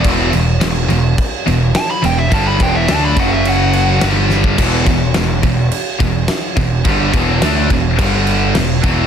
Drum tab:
CC |x-x-x-x-x-x-x-x-|x-x-x-x-x-x-x---|x-x-x-x-x-x-x-x-|x-x-x-x-x-x-x-x-|
SD |----o-------o---|----o-------o-o-|----o-------o---|----o-------o---|
BD |o-------o-------|o-o---o--------o|o-o---o---o---o-|o-o---o-o-----o-|